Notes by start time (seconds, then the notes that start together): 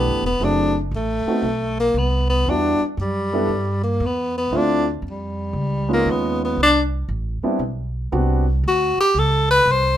Already playing: E3 A3 B3 D4 G4
0.06 G1
0.22 E1 B3
0.40 F#1 F#3 A3 C4 E4 G#4
0.44 D4
0.91 A1
0.96 A3
1.26 A3 B3 C4 D#4 F#4, muted upright bass stroke
1.42 B1
1.80 A#3
1.94 C2 B3
2.30 B3
2.46 E2 G3 B3 D4 E4 F#4
2.80 muted upright bass stroke
2.97 F#2 G3
3.33 G3 B3 D4 E4 A4
3.48 G2
3.84 A#3
4.00 E2
4.06 B3
4.38 B3
4.51 D2 A3 C4 D4 E4 F4
4.57 D4
5.02 F2
5.10 G3
5.53 C#2
5.89 G#3 B3 C#4 D#4 F4
5.93 A#3
6.05 D#2
6.11 B3
6.45 B3
6.57 C2
6.63 D4
7.09 A1
7.43 G3 B3 C4 D4 E4, muted upright bass stroke
7.59 B1
8.12 C2 G3 B3 C4 D4 F#4
8.64 D2
8.68 F#4
8.97 G4, muted upright bass stroke
9.14 C#2
9.18 A4
9.51 B4
9.66 C2
9.71 C5